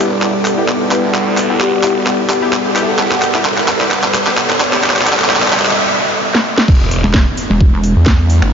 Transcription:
Already playing: detuned saw bass E1, ambient pad G3 B3 F#5, analog synth pad A4 D5, riser
0.00 synth stab B3 E4 G4
0.22 detuned saw bass F#1, clap
0.45 clap, open hi-hat
0.58 synth stab B3 E4 G4
0.68 clap
0.81 detuned saw bass E1
0.91 synth stab B3 E4 G4, vibraphone B4, clap, open hi-hat
1.04 detuned saw bass D2
1.14 clap
1.37 clap, open hi-hat
1.50 detuned saw bass E2, synth stab B3 E4 G4
1.60 vibraphone G4, clap
1.73 detuned saw bass E1
1.83 synth stab B3 E4 G4, clap, open hi-hat
2.07 clap
2.30 clap, open hi-hat
2.42 synth stab B3 E4 G4
2.53 clap
2.65 detuned saw bass E1
2.76 synth stab B3 E4 G4, clap, open hi-hat
2.88 detuned saw bass E1
2.99 detuned saw bass E1, clap
3.11 clap
3.22 clap, open hi-hat
3.35 synth stab B3 E4 G4, clap
3.45 detuned saw bass E1, clap
3.58 clap
3.68 clap, open hi-hat
3.81 synth stab B3 E4 G4, clap
3.91 detuned saw bass F#1, clap
4.04 clap
4.14 clap, open hi-hat
4.27 synth stab B3 E4 G4, clap
4.37 clap
4.50 detuned saw bass E1, clap
4.60 clap, open hi-hat
4.73 detuned saw bass D2, synth stab B3 E4 G4, clap
4.84 synth stab B3 E4 G4, clap
4.90 clap
4.96 clap
5.01 clap
5.07 synth stab B3 E4 G4, clap, open hi-hat
5.13 clap
5.19 detuned saw bass E2, clap
5.24 clap
5.30 synth stab B3 E4 G4, clap
5.36 clap
5.42 clap
5.47 clap
5.53 synth stab B3 E4 G4, clap, open hi-hat
5.59 clap
5.65 clap
5.71 clap
6.35 snare
6.58 snare
6.68 detuned saw bass E1, ambient pad G3 B3 E4, kick, crash, impact
6.91 open hi-hat
7.04 wobble bass E1
7.14 kick, snare
7.37 open hi-hat
7.50 wobble bass E1
7.61 kick
7.84 open hi-hat
7.96 detuned saw bass E2
8.06 kick, snare
8.30 open hi-hat
8.42 detuned saw bass G1, finger snap

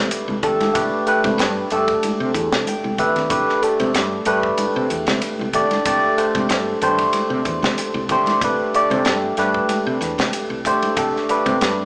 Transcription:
Already playing: tine electric piano A3 D4 G4 B4
0.11 hi-hat pedal, ride
0.28 fretless electric bass C2, high conga
0.43 tine electric piano A3 D4 G4 A4, kick, hi-hat pedal, ride, low conga
0.61 snare, ride, high conga
0.74 fretless electric bass C2, tine electric piano A3 D4 G4 B4, kick, hi-hat pedal, ride
1.07 tine electric piano A3 D4 G4 B4, muted fretless electric bass stroke, hi-hat pedal, ride
1.24 fretless electric bass C3, kick, ride, high conga
1.38 fretless electric bass G2, snare, hi-hat pedal, ride
1.70 fretless electric bass G2, tine electric piano A3 D4 G4 A4, hi-hat pedal, ride
1.88 kick, ride
2.03 hi-hat pedal, ride, high conga
2.20 fretless electric bass C3
2.35 fretless electric bass E2, kick, hi-hat pedal, ride
2.53 fretless electric bass C3, snare, high conga
2.66 tine electric piano G5, hi-hat pedal, ride, high conga
2.84 fretless electric bass C2, high conga
2.98 tine electric piano A3 D4 G4 B4 E5, kick, hi-hat pedal, ride, low conga
3.16 snare, ride, low conga
3.30 fretless electric bass C2, tine electric piano A3 D4 G4 B4, kick, hi-hat pedal, ride
3.49 snare
3.62 tine electric piano A3 D4 G4 A4, muted fretless electric bass stroke, hi-hat pedal, ride
3.80 fretless electric bass C3, ride, high conga
3.94 fretless electric bass G2, snare, hi-hat pedal, ride
4.25 fretless electric bass G2, tine electric piano A3 D4 G4 B4, hi-hat pedal, ride
4.43 kick
4.57 hi-hat pedal, ride, high conga
4.76 fretless electric bass C3
4.90 fretless electric bass E2, hi-hat pedal, ride
5.07 fretless electric bass C3, snare, ride, high conga
5.22 hi-hat pedal, ride
5.39 fretless electric bass C2, high conga
5.53 tine electric piano A3 D4 G4 D5, kick, hi-hat pedal, ride, low conga
5.71 snare, ride, high conga
5.85 fretless electric bass C2, tine electric piano A3 D4 G4 D5, kick, hi-hat pedal, ride
6.17 tine electric piano A3 D4 G4 C5, muted fretless electric bass stroke, hi-hat pedal, ride
6.35 fretless electric bass C3, kick, ride, high conga
6.49 fretless electric bass G2, snare, hi-hat pedal, ride
6.81 fretless electric bass G2, tine electric piano A3 D4 G4 C5, hi-hat pedal, ride, low conga
6.98 kick, ride
7.13 hi-hat pedal, ride, high conga
7.30 fretless electric bass C3
7.45 fretless electric bass E2, kick, hi-hat pedal, ride
7.62 fretless electric bass C3, snare, high conga
7.78 snare, hi-hat pedal, ride
7.94 fretless electric bass C2, high conga
8.09 tine electric piano A3 D4 G4 C5, kick, hi-hat pedal, ride, low conga
8.26 snare, ride, high conga
8.41 fretless electric bass C2, tine electric piano A3 D4 G4 B4, kick, hi-hat pedal, ride
8.73 tine electric piano A3 D4 G4 D5, muted fretless electric bass stroke, hi-hat pedal, ride
8.90 fretless electric bass C3, ride, high conga
9.05 fretless electric bass G2, snare, hi-hat pedal, ride
9.37 fretless electric bass G2, tine electric piano A3 D4 G4 B4, snare, hi-hat pedal, ride
9.54 kick
9.69 hi-hat pedal, ride, high conga
9.87 fretless electric bass C3
10.01 fretless electric bass E2, snare, hi-hat pedal, ride
10.18 fretless electric bass C3, snare, ride, high conga
10.33 hi-hat pedal, ride
10.50 fretless electric bass C2
10.65 tine electric piano A3 D4 G4 C5, kick, hi-hat pedal, ride
10.82 ride, high conga
10.97 fretless electric bass C2, tine electric piano A3 D4 G4 A4, kick, hi-hat pedal, ride
11.16 snare
11.29 tine electric piano A3 D4 G4 B4, muted fretless electric bass stroke, hi-hat pedal, ride
11.46 fretless electric bass C3, kick, ride, high conga
11.61 fretless electric bass G2, snare, hi-hat pedal, ride

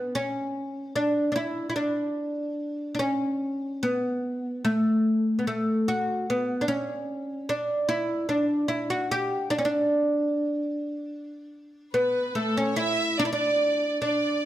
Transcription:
Already playing: oud B3
0.15 oud C#4
0.96 oud D4
1.32 oud D4 E4
1.70 oud E4
1.76 oud D4
2.95 oud D4
2.99 oud C#4
3.83 oud B3
4.65 oud A3
5.39 oud B3
5.47 oud A3
5.88 oud F#4
6.30 oud B3
6.61 oud D4
6.68 oud C#4
7.49 oud D4
7.89 oud E4
8.29 oud D4
8.68 oud E4
8.90 oud F#4
9.11 oud G4
9.50 oud D4
9.58 oud C#4
9.65 oud D4
11.94 oud B3, violin section B4
12.35 oud A3, violin section A4
12.57 oud C#4, violin section C#5
12.76 oud E4, violin section E5
13.18 oud D4, violin section D5
13.25 oud E4
13.33 oud D4, violin section D5
14.01 oud D4, violin section D5

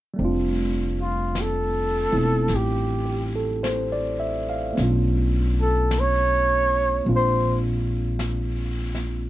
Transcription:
0.14 tine electric piano G3 A3
0.19 upright bass F1, tine electric piano C4 D4, brush sweep
0.25 tine electric piano F4
1.02 flugelhorn F4
1.35 brush sweep, snare, hi-hat pedal
1.41 flugelhorn A4
2.09 upright bass E1, tine electric piano A3 C4 E4
2.48 upright bass A1, brush sweep, snare
2.56 flugelhorn G4
3.06 tine electric piano G4
3.36 tine electric piano A4
3.63 tine electric piano C5, brush sweep, snare, hi-hat pedal
3.92 tine electric piano D5
4.20 tine electric piano E5
4.49 tine electric piano F5
4.73 tine electric piano A3 B3
4.77 upright bass B1, tine electric piano C#4 D4, brush sweep, snare
4.83 tine electric piano F4
5.62 flugelhorn A4
5.91 brush sweep, snare, hi-hat pedal
6.00 flugelhorn C#5
7.05 upright bass A#1, tine electric piano G#3 A#3 C4 D4, brush sweep
7.09 tine electric piano F4
7.15 flugelhorn C5
8.19 brush sweep, snare, hi-hat pedal
8.95 snare

